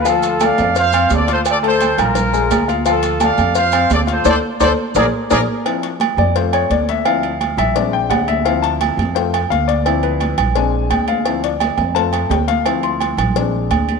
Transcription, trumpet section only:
X:1
M:4/4
L:1/8
Q:1/4=171
K:Ddor
V:1 name="Trumpet section"
[FA]2 [df]2 [cf]2 [Ad] [Ac] | [Ad] [Ac]2 [F_B]4 z | [FA]2 [df]2 [cf]2 [Ad] [Ac] | [Acd] z [Acd] z [_A_Bd] z [ABd] z |
z8 | z8 | z8 | z8 |
z8 | z8 |]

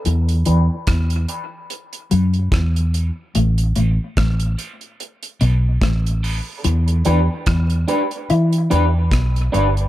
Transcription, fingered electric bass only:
X:1
M:4/4
L:1/16
Q:"Swing 16ths" 1/4=73
K:Em
V:1 name="Fingered electric bass" clef=bass
E,,2 E,, z E,,2 z4 F,,2 E,,3 z | A,,,2 A,,, z A,,,2 z4 B,,,2 A,,,3 z | E,,2 E,, z E,,2 z2 E,2 E,,2 B,,,2 G,,,2 |]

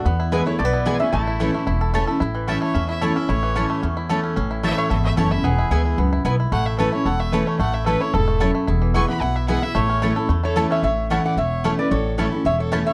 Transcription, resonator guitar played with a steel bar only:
X:1
M:4/4
L:1/8
Q:1/4=223
K:A
V:1 name="Resonator guitar played with a steel bar"
z2 B c d3 e | a6 z2 | z8 | z8 |
z8 | z8 | z8 | z8 |
z8 | z4 z c2 e | e2 f f e3 d | c2 c2 e c2 e |]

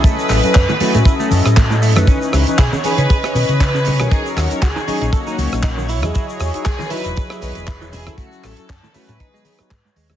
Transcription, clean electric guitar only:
X:1
M:4/4
L:1/16
Q:"Swing 16ths" 1/4=118
K:C#m
V:1 name="Clean electric guitar"
A, z3 C A,, A, A, E A, z2 A, A,, A, A, | C z3 E C, C C G C z2 C C, C C | D z3 F D, D D A D z2 D D, E E | E z3 G E, E E B E z2 E E, E E |
A, z3 C A,, A, A, D G, z2 G, G,, G, G, |]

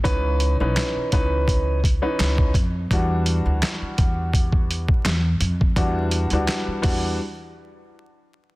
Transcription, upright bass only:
X:1
M:4/4
L:1/16
Q:"Swing 16ths" 1/4=84
K:Elyd
V:1 name="Upright bass" clef=bass
C,,3 B,,, z2 C,,4- C,, z C,,2 ^E,,2 | E,,3 =D,, z2 E,,4- E,, z E,,2 ^E,,2 | E,,3 =D,, z2 E,,2 z8 |]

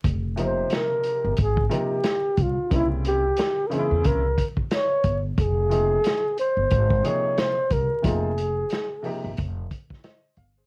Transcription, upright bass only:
X:1
M:4/4
L:1/16
Q:"Swing 16ths" 1/4=90
K:Fm
V:1 name="Upright bass" clef=bass
F,,,4 z3 G,,, A,,,2 z4 C,, z | C,,4 z3 =E,, C,,2 z4 G,,,2 | F,,,4 z3 G,,, A,,,2 z4 C,, z | F,,,4 z3 A,,, F,,,2 z4 G,,,2 |]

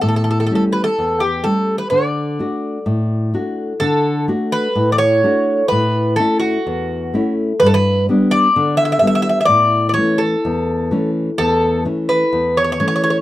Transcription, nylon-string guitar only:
X:1
M:4/4
L:1/8
Q:1/4=127
K:D
V:1 name="Nylon-string guitar"
A,,2 [G,A,C]2 E,,2 [G,A,C]2 | D,2 [A,DF]2 A,,2 [A,DF]2 | D,2 [A,DF]2 A,,2 [A,DF]2 | A,,2 [A,CE]2 E,,2 [A,CE]2 |
G,,2 [G,B,D]2 D,2 [G,B,D]2 | A,,2 [E,A,C]2 E,,2 [E,A,C]2 | E,,2 [E,A,C]2 E,,2 [E,A,C]2 |]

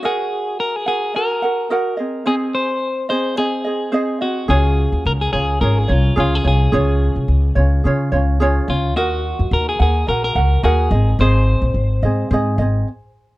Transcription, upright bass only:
X:1
M:4/4
L:1/16
Q:"Swing 16ths" 1/4=108
K:Db
V:1 name="Upright bass" clef=bass
z16 | z16 | D,,3 E,, D,,2 D,,2 A,,,2 C,,2 D,,2 C,,2 | D,,3 C,, D,,2 D,,2 D,2 D,,4 D,,2 |
E,,3 F,, E,,2 E,,2 B,,,2 D,,2 E,,2 A,,,2 | A,,,3 B,,, A,,,2 A,,2 A,,2 A,,,2 z4 |]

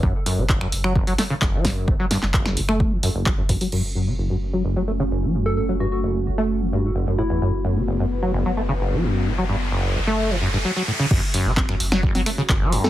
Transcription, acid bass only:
X:1
M:4/4
L:1/16
Q:1/4=130
K:F#m
V:1 name="Acid bass" clef=bass
F,, z F,, C, F,,, F,, z F, F,,, F, A, C, F,,, F, F,,2 | A,, F, =G,, z F,,,2 F,, A,2 E, F,, F,,, F, F,, F,, F, | F,, z F,, C, F,,, F,, z F, F,,, F, A, C, F,,, F, F,,2 | A,, F, =G,, z F,,,2 F,, A,2 E, G,, A,, F,,, F,, A,, E,, |
F,, z F,, C, F,,, F,, z F, F,,, F, A, C, F,,, F, F,,2 | A,, F, =G,, z F,,,2 F,, A,2 E, F,, G,, F, F, A,, C, | F,, z F,, C, F,,, F,, z F, F,,, F, A, C, F,,, F, F,,2 |]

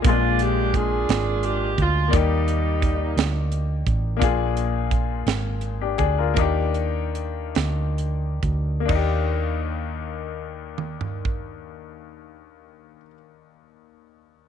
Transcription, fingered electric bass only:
X:1
M:6/8
L:1/8
Q:3/8=53
K:Eb
V:1 name="Fingered electric bass" clef=bass
B,,,3 A,,,2 D,, | E,,3 D,,2 =A,,, | B,,,3 A,,,2 D,, | E,,3 D,,2 D,, |
E,,6- | E,,6 |]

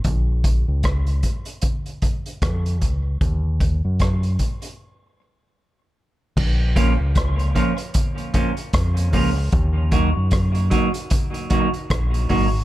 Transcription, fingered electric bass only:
X:1
M:4/4
L:1/16
Q:"Swing 16ths" 1/4=76
K:Bbm
V:1 name="Fingered electric bass" clef=bass
B,,,3 D,,3 z6 F,,2 D,,2 | E,,3 G,,3 z8 z2 | B,,,3 D,,3 z6 F,,2 D,,2 | E,,3 G,,3 z6 B,,,2 A,,,2 |]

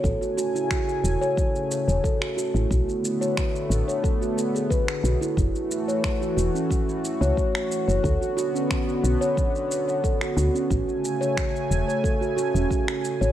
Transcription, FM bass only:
X:1
M:4/4
L:1/16
Q:1/4=90
K:A
V:1 name="FM bass" clef=bass
A,,, z4 z E,,, z4 E,,, z3 A,,, | B,,, z4 z A,,, z6 z B,,, z | F,,, z4 z E,,, z4 C,, z3 F,,, | D,, z4 z B,,, z6 z D,, z |
A,,, z4 z E,,, z4 E,,, z3 A,,, |]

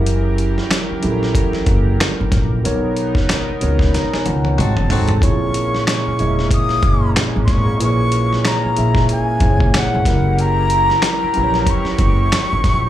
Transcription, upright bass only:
X:1
M:4/4
L:1/16
Q:"Swing 16ths" 1/4=93
K:F#mix
V:1 name="Upright bass" clef=bass
F,,,4 z2 A,,,2 z2 F,,,2 z =G,,, A,,,2 | B,,,4 z2 C,,2 z2 C,,2 G,,, F,,, G,,,2 | A,,,4 z2 E,,,2 z2 F,,,2 z G,,, G,,,2 | A,,,4 z2 A,,,2 z2 F,,,2 z E,,, F,,,2- |
F,,,4 z2 A,,,2 z2 F,,,2 z =G,,, A,,,2 |]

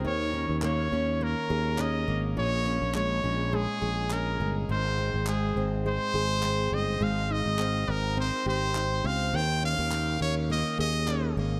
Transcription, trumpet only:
X:1
M:4/4
L:1/16
Q:"Swing 16ths" 1/4=103
K:Ab
V:1 name="Trumpet"
d4 d4 B4 e3 z | d4 d4 A4 B3 z | c4 A3 z c6 e2 | f2 e4 B2 c2 c4 f2 |
g2 f4 d2 e2 e4 z2 |]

